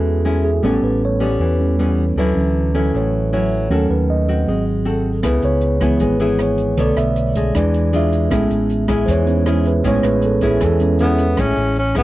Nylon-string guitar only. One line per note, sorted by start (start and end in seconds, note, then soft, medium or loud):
0.00 0.61 E3 soft
0.00 0.22 G#3 medium
0.00 0.22 C#4 medium
0.00 0.22 E4 medium
0.25 0.50 G#3 medium
0.25 0.50 C#4 medium
0.25 0.50 E4 medium
0.63 1.38 A2 medium
0.63 1.01 G3 medium
0.63 1.01 B3 medium
0.63 1.02 C#4 medium
1.20 1.75 G3 medium
1.20 1.75 B3 medium
1.20 1.75 C#4 medium
1.41 2.15 E3 soft
1.79 2.03 G3 medium
1.79 2.04 B3 medium
1.79 2.04 C#4 medium
2.18 2.92 D3 medium
2.18 2.72 F#3 medium
2.18 2.72 C#4 medium
2.18 2.72 E4 medium
2.74 3.29 F#3 medium
2.74 3.29 C#4 medium
2.74 3.29 E4 medium
2.94 3.69 A2 medium
3.33 3.68 F#3 medium
3.33 3.68 C#4 medium
3.33 3.68 E4 medium
3.70 4.46 D#3 soft
3.70 4.25 C#4 medium
3.70 4.25 F#4 medium
3.70 4.26 A4 medium
4.28 4.83 C4 medium
4.28 4.83 F#4 medium
4.48 5.23 G#3 medium
4.85 5.10 C4 medium
4.85 5.10 F#4 medium
4.85 5.11 A4 medium
5.23 5.98 C#3 soft
5.23 5.78 B3 medium
5.23 5.79 E4 medium
5.23 5.78 G#4 medium
5.80 6.16 B3 medium
5.80 6.17 E4 medium
5.80 6.17 G#4 medium
6.01 6.76 G#3 soft
6.20 6.74 B3 medium
6.20 6.75 E4 medium
6.20 6.75 G#4 medium
6.78 7.36 B3 medium
6.78 7.32 D4 medium
6.78 7.33 A4 medium
6.78 7.33 C#5 medium
7.37 7.90 G#3 medium
7.37 7.91 D4 medium
7.56 8.30 E3 medium
7.93 8.28 G#3 medium
7.93 8.29 D4 medium
7.93 8.29 F4 medium
8.30 9.06 A2 medium
8.30 8.86 G#3 soft
8.30 8.86 C#4 medium
8.30 8.86 E4 medium
8.88 9.43 G#3 medium
8.88 9.43 C#4 medium
8.88 9.43 E4 medium
9.08 9.83 E3 medium
9.46 9.71 G#3 medium
9.46 9.71 C#4 medium
9.46 9.71 E4 medium
9.84 10.59 A2 medium
9.84 10.39 G#3 medium
9.84 10.39 C#4 medium
9.84 10.39 E4 medium
10.42 10.96 G#3 medium
10.42 10.97 C#4 medium
10.42 10.97 E4 medium
10.61 11.36 E3 medium
11.00 11.25 G#3 medium
11.00 11.25 C#4 medium
11.00 11.25 E4 medium
11.38 12.03 A2 medium
11.38 11.76 G#3 medium
11.38 11.76 C#4 medium
11.38 11.77 E4 medium
11.95 12.03 G#3 medium
11.95 12.03 C#4 medium
11.95 12.03 E4 medium